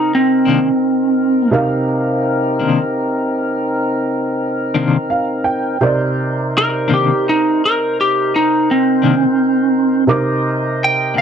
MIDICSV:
0, 0, Header, 1, 5, 480
1, 0, Start_track
1, 0, Key_signature, -3, "minor"
1, 0, Tempo, 711744
1, 1039, Time_signature, 12, 3, 24, 8
1, 7565, End_track
2, 0, Start_track
2, 0, Title_t, "Tonewheel organ"
2, 0, Program_c, 0, 16
2, 0, Note_on_c, 0, 60, 56
2, 0, Note_on_c, 0, 63, 56
2, 0, Note_on_c, 0, 70, 62
2, 1014, Note_off_c, 0, 63, 0
2, 1015, Note_off_c, 0, 70, 0
2, 1018, Note_off_c, 0, 60, 0
2, 1036, Note_on_c, 0, 63, 60
2, 1043, Note_on_c, 0, 70, 59
2, 1049, Note_on_c, 0, 60, 59
2, 3895, Note_off_c, 0, 63, 0
2, 3899, Note_off_c, 0, 70, 0
2, 3901, Note_off_c, 0, 60, 0
2, 3920, Note_on_c, 0, 72, 71
2, 3922, Note_on_c, 0, 70, 68
2, 3928, Note_on_c, 0, 63, 66
2, 6773, Note_off_c, 0, 72, 0
2, 6774, Note_off_c, 0, 70, 0
2, 6777, Note_off_c, 0, 63, 0
2, 6803, Note_on_c, 0, 70, 65
2, 6806, Note_on_c, 0, 63, 59
2, 6811, Note_on_c, 0, 75, 62
2, 6812, Note_on_c, 0, 72, 57
2, 7565, Note_off_c, 0, 63, 0
2, 7565, Note_off_c, 0, 70, 0
2, 7565, Note_off_c, 0, 72, 0
2, 7565, Note_off_c, 0, 75, 0
2, 7565, End_track
3, 0, Start_track
3, 0, Title_t, "Upright piano"
3, 0, Program_c, 1, 0
3, 0, Note_on_c, 1, 48, 53
3, 0, Note_on_c, 1, 63, 47
3, 0, Note_on_c, 1, 70, 48
3, 0, Note_on_c, 1, 74, 59
3, 1003, Note_off_c, 1, 48, 0
3, 1006, Note_off_c, 1, 63, 0
3, 1009, Note_off_c, 1, 70, 0
3, 1011, Note_off_c, 1, 74, 0
3, 1019, Note_on_c, 1, 48, 54
3, 1025, Note_on_c, 1, 63, 50
3, 1029, Note_on_c, 1, 70, 55
3, 1035, Note_on_c, 1, 77, 59
3, 3430, Note_off_c, 1, 77, 0
3, 3440, Note_on_c, 1, 77, 55
3, 3665, Note_off_c, 1, 77, 0
3, 3671, Note_on_c, 1, 79, 57
3, 3887, Note_off_c, 1, 48, 0
3, 3890, Note_off_c, 1, 63, 0
3, 3892, Note_off_c, 1, 70, 0
3, 3900, Note_off_c, 1, 79, 0
3, 3917, Note_on_c, 1, 48, 62
3, 3922, Note_on_c, 1, 63, 52
3, 3927, Note_on_c, 1, 70, 55
3, 3931, Note_on_c, 1, 74, 65
3, 6771, Note_off_c, 1, 48, 0
3, 6774, Note_off_c, 1, 63, 0
3, 6777, Note_off_c, 1, 70, 0
3, 6778, Note_off_c, 1, 74, 0
3, 6792, Note_on_c, 1, 48, 54
3, 6799, Note_on_c, 1, 63, 46
3, 6799, Note_on_c, 1, 70, 50
3, 6807, Note_on_c, 1, 86, 63
3, 7565, Note_off_c, 1, 48, 0
3, 7565, Note_off_c, 1, 63, 0
3, 7565, Note_off_c, 1, 70, 0
3, 7565, Note_off_c, 1, 86, 0
3, 7565, End_track
4, 0, Start_track
4, 0, Title_t, "Lead electric guitar"
4, 0, Program_c, 2, 29
4, 0, Note_on_c, 2, 63, 77
4, 77, Note_off_c, 2, 63, 0
4, 99, Note_on_c, 2, 60, 80
4, 1024, Note_off_c, 2, 60, 0
4, 4437, Note_on_c, 2, 70, 97
4, 4654, Note_off_c, 2, 70, 0
4, 4677, Note_on_c, 2, 67, 61
4, 4894, Note_off_c, 2, 67, 0
4, 4918, Note_on_c, 2, 63, 73
4, 5134, Note_off_c, 2, 63, 0
4, 5162, Note_on_c, 2, 70, 75
4, 5376, Note_off_c, 2, 70, 0
4, 5400, Note_on_c, 2, 67, 71
4, 5615, Note_off_c, 2, 67, 0
4, 5637, Note_on_c, 2, 63, 78
4, 5853, Note_off_c, 2, 63, 0
4, 5875, Note_on_c, 2, 60, 77
4, 6791, Note_off_c, 2, 60, 0
4, 7313, Note_on_c, 2, 79, 81
4, 7530, Note_off_c, 2, 79, 0
4, 7541, Note_on_c, 2, 77, 73
4, 7565, Note_off_c, 2, 77, 0
4, 7565, End_track
5, 0, Start_track
5, 0, Title_t, "Clean electric guitar"
5, 0, Program_c, 3, 27
5, 306, Note_on_c, 3, 62, 64
5, 313, Note_on_c, 3, 58, 55
5, 317, Note_on_c, 3, 51, 51
5, 324, Note_on_c, 3, 48, 53
5, 456, Note_off_c, 3, 62, 0
5, 460, Note_off_c, 3, 58, 0
5, 461, Note_off_c, 3, 51, 0
5, 465, Note_off_c, 3, 48, 0
5, 1751, Note_on_c, 3, 62, 55
5, 1757, Note_on_c, 3, 58, 55
5, 1763, Note_on_c, 3, 51, 56
5, 1767, Note_on_c, 3, 48, 50
5, 1900, Note_off_c, 3, 62, 0
5, 1903, Note_off_c, 3, 58, 0
5, 1906, Note_off_c, 3, 51, 0
5, 1908, Note_off_c, 3, 48, 0
5, 3200, Note_on_c, 3, 62, 66
5, 3204, Note_on_c, 3, 58, 59
5, 3207, Note_on_c, 3, 51, 67
5, 3211, Note_on_c, 3, 48, 60
5, 3346, Note_off_c, 3, 62, 0
5, 3348, Note_off_c, 3, 58, 0
5, 3349, Note_off_c, 3, 51, 0
5, 3351, Note_off_c, 3, 48, 0
5, 4639, Note_on_c, 3, 62, 54
5, 4648, Note_on_c, 3, 58, 47
5, 4652, Note_on_c, 3, 51, 49
5, 4658, Note_on_c, 3, 48, 49
5, 4786, Note_off_c, 3, 62, 0
5, 4790, Note_off_c, 3, 58, 0
5, 4792, Note_off_c, 3, 51, 0
5, 4795, Note_off_c, 3, 48, 0
5, 6083, Note_on_c, 3, 62, 57
5, 6090, Note_on_c, 3, 58, 53
5, 6094, Note_on_c, 3, 51, 55
5, 6098, Note_on_c, 3, 48, 51
5, 6227, Note_off_c, 3, 62, 0
5, 6230, Note_off_c, 3, 58, 0
5, 6232, Note_off_c, 3, 51, 0
5, 6234, Note_off_c, 3, 48, 0
5, 7514, Note_on_c, 3, 62, 53
5, 7520, Note_on_c, 3, 58, 52
5, 7525, Note_on_c, 3, 51, 47
5, 7526, Note_on_c, 3, 48, 44
5, 7565, Note_off_c, 3, 48, 0
5, 7565, Note_off_c, 3, 51, 0
5, 7565, Note_off_c, 3, 58, 0
5, 7565, Note_off_c, 3, 62, 0
5, 7565, End_track
0, 0, End_of_file